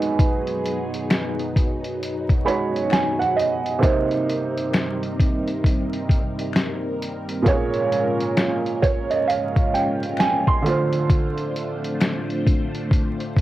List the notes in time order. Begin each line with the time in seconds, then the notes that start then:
Already playing: F#3 G#3 B3 D#4 F#4 G#4 B4
0.02 closed hi-hat
0.19 kick, closed hi-hat
0.47 closed hi-hat
0.65 closed hi-hat
0.94 closed hi-hat
1.10 finger snap, snare, closed hi-hat
1.39 closed hi-hat
1.55 F#4, kick, closed hi-hat
1.84 closed hi-hat
2.03 closed hi-hat
2.29 kick, closed hi-hat
2.45 G#3 D#4 F#4 C#5 B5, closed hi-hat
2.76 closed hi-hat
2.90 G#5, finger snap, snare, closed hi-hat
3.19 F#5, closed hi-hat
3.36 D#5, closed hi-hat
3.66 closed hi-hat
3.79 C3 A#3 D#4
3.83 G3 C4 D#4 A#4 C5, kick, closed hi-hat
4.11 closed hi-hat
4.30 closed hi-hat
4.58 closed hi-hat
4.74 finger snap, snare, closed hi-hat
5.03 closed hi-hat
5.20 kick, closed hi-hat
5.48 closed hi-hat
5.64 kick, closed hi-hat
5.93 closed hi-hat
6.09 kick, closed hi-hat
6.39 closed hi-hat
6.53 finger snap, snare, closed hi-hat
7.02 closed hi-hat
7.29 closed hi-hat
7.42 A#2 G#3 A#3 C#4 F4 G#4, kick, closed hi-hat
7.48 C#5
7.74 closed hi-hat
7.92 closed hi-hat
8.21 closed hi-hat
8.37 finger snap, snare, closed hi-hat
8.66 closed hi-hat
8.82 C#5, kick, closed hi-hat
9.10 D#5, closed hi-hat
9.27 F5, closed hi-hat
9.56 kick, closed hi-hat
9.74 G5, closed hi-hat
10.03 closed hi-hat
10.17 G#5, finger snap, snare, closed hi-hat
10.47 C6, kick
10.62 D3 A3 D4 F4 C5, closed hi-hat
10.68 C5
10.93 closed hi-hat
11.10 kick, closed hi-hat
11.38 closed hi-hat
11.56 closed hi-hat
11.84 closed hi-hat
12.00 finger snap, snare, closed hi-hat
12.30 closed hi-hat
12.47 kick, closed hi-hat
12.75 closed hi-hat
12.91 kick, closed hi-hat
13.20 closed hi-hat
13.37 kick